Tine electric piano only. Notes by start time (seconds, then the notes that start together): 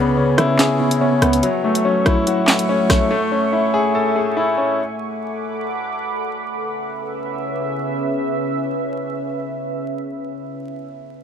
Already playing: C#3 B3
0.17 C#3
0.38 C#4
0.59 C#3
0.80 B3
1.01 B3
1.22 B3
1.43 F#3
1.64 A3
1.85 F#3
2.06 E4
2.27 F#3
2.48 A3
2.69 A3